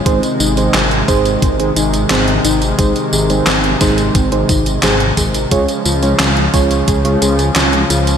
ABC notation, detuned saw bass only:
X:1
M:4/4
L:1/8
Q:1/4=88
K:Abmix
V:1 name="Detuned saw bass" clef=bass
A,,, A,,, A,,, A,,, A,,, A,,, A,,, A,,, | A,,, A,,, A,,, A,,, A,,, A,,, A,,, A,,, | D,, D,, D,, D,, D,, D,, D,, D,, |]